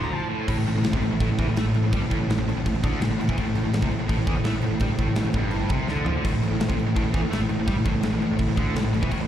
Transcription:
Already playing: picked electric bass D2, distorted electric guitar D3, analog synth pad A3 E4 A4 C5
0.04 lead electric guitar A#5
0.12 distorted electric guitar F3, lead electric guitar A5
0.30 distorted electric guitar A2
0.47 picked electric bass A1, distorted electric guitar A2, analog synth pad A3 E4 A4 C5, kick, crash
0.58 picked electric bass A1, distorted electric guitar A2
0.66 picked electric bass A1, distorted electric guitar A2, crash
0.75 picked electric bass A1, distorted electric guitar A2
0.84 picked electric bass A1, distorted electric guitar A2, snare, crash
0.93 picked electric bass C2, distorted electric guitar C3, kick
1.02 picked electric bass A1, distorted electric guitar A2, crash
1.12 picked electric bass A1, distorted electric guitar A2
1.20 picked electric bass A1, distorted electric guitar A2, kick, crash
1.30 picked electric bass A1, distorted electric guitar A2
1.38 picked electric bass E2, distorted electric guitar E3, kick, crash
1.48 picked electric bass A1, distorted electric guitar A2
1.56 picked electric bass A2, distorted electric guitar A3, snare, crash
1.65 picked electric bass A1, distorted electric guitar A2
1.74 picked electric bass A1, distorted electric guitar A2, crash
1.83 picked electric bass A1, distorted electric guitar A2
1.92 picked electric bass G2, distorted electric guitar G3, kick, crash
2.01 picked electric bass A1, distorted electric guitar A2
2.11 picked electric bass A1, distorted electric guitar A2, kick, crash
2.20 picked electric bass A1, distorted electric guitar A2
2.28 picked electric bass A1, distorted electric guitar A2, snare, crash
2.37 picked electric bass A1, distorted electric guitar A2
2.47 picked electric bass A1, distorted electric guitar A2, crash
2.55 picked electric bass A1, distorted electric guitar A2
2.66 picked electric bass A1, distorted electric guitar A2, kick, crash
2.73 picked electric bass A1, distorted electric guitar A2
2.84 picked electric bass D2, distorted electric guitar D3, kick, crash
3.01 picked electric bass A1, distorted electric guitar A2, snare, crash
3.10 picked electric bass A1, distorted electric guitar A2
3.19 picked electric bass A1, distorted electric guitar A2, crash
3.29 picked electric bass E2, distorted electric guitar E3, kick
3.37 picked electric bass A1, distorted electric guitar A2, kick, crash
3.46 picked electric bass A1, distorted electric guitar A2
3.55 picked electric bass A1, distorted electric guitar A2, crash
3.65 picked electric bass A1, distorted electric guitar A2
3.73 picked electric bass A1, distorted electric guitar A2, snare, crash
3.82 picked electric bass C2, distorted electric guitar C3, kick
3.91 picked electric bass A1, distorted electric guitar A2, crash
4.00 picked electric bass A1, distorted electric guitar A2
4.08 picked electric bass A1, distorted electric guitar A2, kick, crash
4.18 picked electric bass A1, distorted electric guitar A2
4.27 picked electric bass E2, distorted electric guitar E3, kick, crash
4.36 picked electric bass A1, distorted electric guitar A2
4.44 picked electric bass A2, distorted electric guitar A3, snare, crash
4.53 picked electric bass A1, distorted electric guitar A2
4.62 picked electric bass A1, distorted electric guitar A2, crash
4.71 picked electric bass A1, distorted electric guitar A2
4.80 picked electric bass G2, distorted electric guitar G3, kick, crash
4.89 picked electric bass A1, distorted electric guitar A2
4.98 picked electric bass A1, distorted electric guitar A2, kick, crash
5.08 picked electric bass A1, distorted electric guitar A2
5.15 picked electric bass A1, distorted electric guitar A2, snare, crash
5.25 picked electric bass A1, distorted electric guitar A2
5.33 picked electric bass G1, distorted electric guitar G2, kick, crash
5.51 crash
5.69 picked electric bass C2, distorted electric guitar C3, kick, crash
5.87 picked electric bass D2, distorted electric guitar D3, snare
6.04 picked electric bass F2, distorted electric guitar F3, floor tom
6.14 picked electric bass D2, distorted electric guitar D3
6.24 picked electric bass A1, distorted electric guitar A2, kick, splash, crash
6.30 picked electric bass A1, distorted electric guitar A2
6.39 picked electric bass A1, distorted electric guitar A2
6.43 crash
6.49 picked electric bass A1
6.53 distorted electric guitar A2
6.58 picked electric bass A1, distorted electric guitar A2, snare, crash
6.69 picked electric bass C2, distorted electric guitar C3, kick
6.76 picked electric bass A1, distorted electric guitar A2, crash
6.86 picked electric bass A1, distorted electric guitar A2
6.96 picked electric bass A1, distorted electric guitar A2, kick, crash
7.04 picked electric bass A1, distorted electric guitar A2
7.14 picked electric bass E2, distorted electric guitar E3, kick, crash
7.22 picked electric bass A1, distorted electric guitar A2
7.31 picked electric bass A2, distorted electric guitar A3, snare, crash
7.40 picked electric bass A1, distorted electric guitar A2
7.49 picked electric bass A1, distorted electric guitar A2, crash
7.58 picked electric bass A1, distorted electric guitar A2
7.66 picked electric bass G2, distorted electric guitar G3, kick, crash
7.75 picked electric bass A1, distorted electric guitar A2
7.84 picked electric bass A1, distorted electric guitar A2, kick, crash
7.92 picked electric bass A1, distorted electric guitar A2
8.01 picked electric bass A1, distorted electric guitar A2, snare, crash
8.11 picked electric bass A1, distorted electric guitar A2
8.19 picked electric bass A1, distorted electric guitar A2, crash
8.27 picked electric bass A1, distorted electric guitar A2
8.32 distorted electric guitar A2
8.37 picked electric bass A1, distorted electric guitar A2, kick, crash
8.47 picked electric bass A1, distorted electric guitar A2
8.56 picked electric bass D2, distorted electric guitar D3, kick, crash
8.75 picked electric bass A1, distorted electric guitar A2, snare, crash
8.82 picked electric bass A1, distorted electric guitar A2
8.92 picked electric bass A1, distorted electric guitar A2, crash
9.00 picked electric bass E2, distorted electric guitar E3, kick
9.10 picked electric bass A1, distorted electric guitar A2, kick, crash
9.20 picked electric bass A1, distorted electric guitar A2

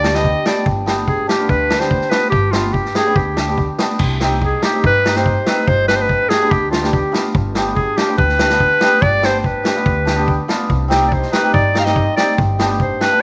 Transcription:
Already playing: upright bass D2, clarinet D5
0.02 hammered dulcimer D4 G4, snare
0.14 hammered dulcimer B3 D4 G4, clarinet D#5, snare
0.24 kick
0.45 hammered dulcimer B3 D4 G4, clarinet D5, snare
0.66 upright bass G1, kick
0.86 hammered dulcimer B3 D4 G4, snare
1.08 clarinet G#4, kick
1.27 hammered dulcimer D4 F4, clarinet G4, snare
1.39 hammered dulcimer B3 D4 F4
1.49 upright bass D2, clarinet B4, kick
1.70 hammered dulcimer D4 F4, snare
1.78 hammered dulcimer B3 D4 G4, clarinet C5, snare
1.91 kick
2.01 snare
2.10 hammered dulcimer B3 D4 F4, clarinet B4, snare
2.30 upright bass G1, clarinet G4, kick
2.51 hammered dulcimer B3 D4 G4, clarinet F4, snare
2.73 clarinet G4, kick
2.85 snare
2.95 hammered dulcimer D4 G4, clarinet G#4, snare
3.06 hammered dulcimer B3 D4 G4
3.16 upright bass D2, clarinet G4, kick
3.37 hammered dulcimer D4 G4, snare
3.48 hammered dulcimer B3 D4 G4
3.58 kick
3.78 hammered dulcimer B3 D4 G4, snare
3.99 upright bass C2, kick, crash
4.20 hammered dulcimer C4 D#4 G4, snare
4.42 clarinet G#4, kick
4.62 hammered dulcimer D#4 G4, clarinet G4, snare
4.73 hammered dulcimer C4 D#4 G4
4.84 upright bass G2, clarinet B4, kick
5.04 hammered dulcimer D#4 G4, snare
5.15 hammered dulcimer C4 D#4 G4, clarinet C5, snare
5.26 kick
5.46 hammered dulcimer C4 D#4 F4, clarinet B4, snare
5.68 upright bass G1, clarinet C5, kick
5.88 hammered dulcimer B3 D4 G4, clarinet B4, snare
5.96 clarinet C5
6.02 clarinet B4
6.09 kick
6.29 hammered dulcimer D4 G4, clarinet G#4, snare
6.42 hammered dulcimer B3 D4 G4
6.51 upright bass D2, clarinet G4, kick
6.71 hammered dulcimer D4 F4, clarinet F4, snare
6.81 hammered dulcimer B3 D4 G4, snare
6.92 clarinet G4, kick
7.12 hammered dulcimer B3 D4 F4, snare
7.35 upright bass G1, kick
7.55 hammered dulcimer B3 D4 G4, snare
7.75 clarinet G#4, kick
7.97 hammered dulcimer D4 F4, clarinet G4, snare
8.08 hammered dulcimer B3 D4 G4
8.18 upright bass D2, clarinet B4, kick
8.29 snare
8.39 hammered dulcimer D4 G4, snare
8.50 hammered dulcimer B3 D4 F4, snare
8.60 kick
8.81 hammered dulcimer B3 D4 G4, snare
9.02 upright bass G1, clarinet D5, kick
9.22 hammered dulcimer B3 D4 G4, clarinet C5, snare
9.39 clarinet C5
9.44 clarinet B4, kick
9.64 hammered dulcimer D4 G4, snare
9.75 hammered dulcimer B3 D4 F4
9.86 upright bass D2, kick
10.05 hammered dulcimer D4 G4, snare
10.16 hammered dulcimer B3 D4 G4
10.28 kick
10.48 hammered dulcimer B3 D4 F4, snare
10.70 upright bass C2, kick
10.88 hammered dulcimer C4 D#4 G4, snare
11.08 clarinet D5, kick
11.13 clarinet C5
11.23 snare
11.32 hammered dulcimer D#4 G4, clarinet B4, snare
11.42 hammered dulcimer C4 D#4 G4
11.53 upright bass G2, clarinet D5, kick
11.74 hammered dulcimer D#4 G4, snare
11.80 clarinet F5
11.85 hammered dulcimer C4 D#4 G4, clarinet D#5, snare
11.96 kick
12.17 hammered dulcimer C4 D#4 G4, clarinet D5, snare
12.38 upright bass G1, kick
12.59 hammered dulcimer B3 D4 G4, snare
12.80 clarinet C5, kick
13.00 hammered dulcimer D4 G4, clarinet B4, snare
13.11 hammered dulcimer B3 D4 F4

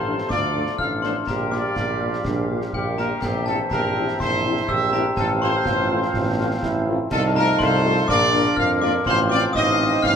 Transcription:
Already playing: tuba A1, trombone section F3 A3, euphonium G4, woodwind section A4 F5, trumpet section C5, glockenspiel C6
0.06 french horn section F3 A3 D4
0.18 snare
0.29 tuba D2, euphonium F4, woodwind section A4 F5, trumpet section D5, glockenspiel D6, concert bass drum, snare
0.54 french horn section F3 A3 D4
0.66 snare
0.79 tuba A1, euphonium D4, woodwind section A4 F5, trumpet section F5, glockenspiel F6, concert bass drum
1.02 french horn section F3 A3 D4, trumpet section C5, glockenspiel C6, snare
1.27 tuba A#1, trombone section F3 G3, euphonium G4, woodwind section G4 F5, trumpet section A#4, glockenspiel A#5, concert bass drum, snare
1.51 french horn section G3 A#3 F4, trumpet section D5, glockenspiel D6, snare
1.76 tuba A#1, euphonium F4, concert bass drum, snare
2.01 french horn section G3 A#3 F4
2.13 snare
2.25 tuba A#1, euphonium D4, concert bass drum, snare
2.50 french horn section G3 A#3 F4
2.61 snare
2.73 tuba A#1, euphonium A#3, trumpet section G4, woodwind section G4 F5, glockenspiel G5, concert bass drum
2.98 french horn section G3 A#3 F4, trumpet section A#4, glockenspiel A#5, snare
3.21 tuba A#1, trombone section E3 C4, trumpet section G4, woodwind section C5 E5, glockenspiel G5, concert bass drum, snare, crash
3.46 french horn section G3 C4 E4, trumpet section A4, glockenspiel A5, snare
3.71 tuba A#1, euphonium G4, trumpet section A#4, woodwind section C5 E5, glockenspiel A#5, concert bass drum, snare
3.96 french horn section G3 C4 E4
4.08 snare
4.20 tuba A#1, euphonium E4, woodwind section C5 E5, trumpet section C5, glockenspiel C6, concert bass drum, snare
4.45 french horn section G3 C4 E4
4.57 snare
4.67 tuba A#1, euphonium G4, woodwind section C5 E5, trumpet section E5, glockenspiel E6, concert bass drum
4.93 french horn section G3 C4 E4, trumpet section A#4, glockenspiel A#5, snare
5.17 tuba A1, trombone section F3 C4, trumpet section A4, woodwind section C5 F5, glockenspiel A5, concert bass drum, snare
5.42 french horn section A3 C4 F4, trumpet section C5, glockenspiel C6, snare
5.65 tuba A1, euphonium F4, concert bass drum, snare
5.90 french horn section A3 C4 F4
6.02 snare
6.14 tuba A1, concert bass drum, snare
6.39 french horn section A3 C4 F4
6.62 tuba A1, euphonium E4, concert bass drum, snare
6.88 french horn section A3 C4 F4
7.11 tuba C2, trombone section F3 A3, euphonium D#4, woodwind section A4 F5, trumpet section A4, glockenspiel A5, concert bass drum, snare, crash
7.36 french horn section A3 D#4 F4, trumpet section A#4, glockenspiel A#5, snare
7.59 tuba C2, woodwind section A4 F5, trumpet section C5, glockenspiel C6, concert bass drum, snare
7.84 french horn section A3 D#4 F4
7.97 snare
8.08 tuba A#1, trombone section A#3, euphonium D4, woodwind section A#4 F5, trumpet section D5, glockenspiel D6, concert bass drum, snare
8.33 french horn section A#3 D4 F4
8.46 snare
8.56 tuba F2, woodwind section A#4 F5, trumpet section F5, glockenspiel F6, concert bass drum
8.82 french horn section A#3 D4 F4, trumpet section D5, glockenspiel D6, snare
9.05 tuba A1, trombone section F3 C4, euphonium F4, woodwind section C5 F5, trumpet section C5, glockenspiel C6, concert bass drum, snare
9.30 french horn section C4 F4, trumpet section D5, glockenspiel D6, snare
9.53 tuba A1, euphonium D#4, woodwind section C5 F5, trumpet section D#5, glockenspiel D#6, concert bass drum, snare
9.79 french horn section C4 F4
9.91 snare
10.02 tuba A1, woodwind section C5 F5, trumpet section F5, glockenspiel F6, concert bass drum, snare

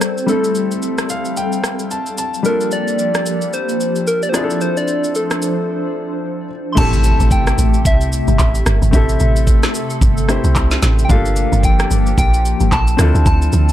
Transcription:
Already playing: grand piano G3 A3 C4 E4 A4, analog synth pad G3 C4 A4, soft synth lead C5
0.01 cross-stick, shaker
0.18 shaker
0.27 grand piano G3 A3 C4 E4, soft synth lead A4, shaker
0.32 grand piano A4
0.44 shaker
0.55 shaker
0.71 shaker
0.82 shaker
0.98 cross-stick, shaker
1.09 grand piano F5, shaker
1.25 shaker
1.37 grand piano G5, shaker
1.52 shaker
1.64 cross-stick, shaker
1.79 shaker
1.91 grand piano A5, shaker
2.06 shaker
2.18 grand piano A5, shaker
2.34 shaker
2.43 analog synth pad F3 A#3 G4, grand piano G3 A#3 D4 F4, soft synth lead A#4, shaker
2.48 grand piano A4
2.61 shaker
2.71 soft synth lead D5, shaker
2.88 shaker
2.99 shaker
3.14 cross-stick, shaker
3.26 shaker
3.41 shaker
3.53 soft synth lead C5, shaker
3.69 shaker
3.80 shaker
3.96 shaker
4.07 soft synth lead A#4, shaker
4.23 soft synth lead D5, shaker
4.29 grand piano F3, soft synth lead C5
4.33 grand piano C4 D4 E4 G#4, analog synth pad D4 C5, soft synth lead D5, cross-stick, shaker
4.44 grand piano A4
4.50 shaker
4.61 soft synth lead C5, shaker
4.77 soft synth lead D5, shaker
4.88 shaker
5.04 shaker
5.15 soft synth lead A4, shaker
5.31 cross-stick, shaker
5.42 shaker
6.72 grand piano A3 C4, soft synth lead C6
6.77 log drum bass A1, analog synth pad C3 A3 G4, grand piano E4 G4 A4, soft synth lead A5, kick, crash, impact, shaker
6.93 shaker
7.04 soft synth lead A5, shaker
7.20 log drum bass A1, shaker
7.31 soft synth lead G5, kick, shaker
7.47 cross-stick, shaker
7.58 log drum bass A1, shaker
7.74 shaker
7.85 log drum bass C2, soft synth lead E5, kick, shaker
8.01 shaker
8.12 shaker
8.28 log drum bass G1, shaker
8.39 log drum bass A1, kick, clap, shaker
8.55 shaker
8.66 log drum bass G1, cross-stick, shaker
8.82 log drum bass G1, shaker
8.91 log drum bass A1, grand piano A3 C4 E4 G4, analog synth pad A4, soft synth lead E5, kick, shaker
8.96 grand piano A4
9.09 shaker
9.20 log drum bass A1, shaker
9.36 shaker
9.47 kick, shaker
9.63 cross-stick, snare, shaker
9.74 shaker
9.90 shaker
10.01 log drum bass G1, kick, shaker
10.17 shaker
10.28 grand piano A3 C4 E4 G4 C5, cross-stick, shaker
10.44 log drum bass C2, shaker
10.55 kick, clap, shaker
10.71 snare, shaker
10.83 log drum bass A1, snare, shaker
10.99 shaker
11.05 grand piano A3, soft synth lead G5
11.09 log drum bass G1, analog synth pad F3 A#3 G4, grand piano D4 F4 G4 A4, soft synth lead F5, kick, shaker
11.14 grand piano A#3
11.25 shaker
11.36 shaker
11.52 log drum bass G1, shaker
11.63 soft synth lead G5, kick, shaker
11.79 cross-stick, shaker
11.91 log drum bass G1, shaker
12.06 shaker
12.18 log drum bass A#1, soft synth lead G5, kick, shaker
12.34 shaker
12.45 shaker
12.60 log drum bass G1, shaker
12.72 log drum bass A#1, soft synth lead A5, kick, clap, shaker
12.87 shaker
12.97 log drum bass D2, analog synth pad D3 F3 C4, grand piano C4 D4 E4 F4, cross-stick, shaker
13.02 grand piano A4
13.14 log drum bass D2, shaker
13.26 log drum bass D2, soft synth lead A5, kick, shaker
13.42 shaker
13.52 log drum bass D2, shaker
13.69 shaker

